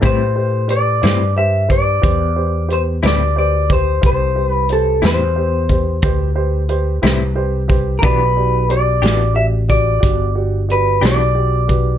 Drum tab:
HH |x-xx-xx-xx-x|x-xx-xx-xx-x|x-xx-xx-xx-x|
SD |---o-----o--|---o-----o--|---o-----o--|
BD |o----oo----o|o----oo----o|o----oo----o|